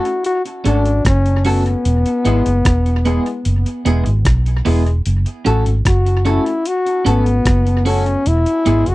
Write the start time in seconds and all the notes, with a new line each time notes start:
Already playing: F#4
0.05 closed hi-hat
0.24 F#4, closed hi-hat
0.46 closed hi-hat
0.64 G#1 A3 C#4 D4 F#4 A4, closed hi-hat
0.85 muted clean electric guitar stroke, closed hi-hat
1.05 F#1 C#4, kick, cross-stick, closed hi-hat
1.26 closed hi-hat
1.45 A3 B3 C#4 F#4 A4, open hi-hat
1.66 closed hi-hat
1.85 E1, closed hi-hat
2.06 closed hi-hat
2.25 G#1 G#3 B3 E4 G#4, closed hi-hat
2.46 F#1, closed hi-hat
2.65 E1, kick, cross-stick, closed hi-hat
2.86 closed hi-hat
3.05 G#3 B3 E4 G#4, closed hi-hat
3.26 closed hi-hat
3.45 F#1, closed hi-hat
3.66 closed hi-hat
3.85 E1 G#3 B3 E4 G#4, closed hi-hat
4.06 G#1, closed hi-hat
4.25 B1, kick, cross-stick, closed hi-hat
4.46 closed hi-hat
4.65 E1 G#3 B3 E4 G#4, open hi-hat
4.86 closed hi-hat
5.06 F#1, closed hi-hat
5.26 closed hi-hat
5.45 A1 A3 C#4 F#4 A4, closed hi-hat
5.66 G#1, closed hi-hat
5.85 F#1 F#4, kick, cross-stick, closed hi-hat
6.06 closed hi-hat
6.25 A3 C#4 E4 F#4 A4, closed hi-hat
6.46 closed hi-hat
6.65 F#4, closed hi-hat
6.86 closed hi-hat
7.05 G#1 A3 B3 C#4 F#4 A4, closed hi-hat
7.26 muted clean electric guitar stroke, closed hi-hat
7.45 F#1, kick, cross-stick, closed hi-hat
7.67 closed hi-hat
7.85 A3 C#4 F#4 A4, open hi-hat
8.06 closed hi-hat
8.26 E1 E4, closed hi-hat
8.46 closed hi-hat
8.65 G#1 G#3 B3 E4 G#4, closed hi-hat
8.86 F#1 F#4, closed hi-hat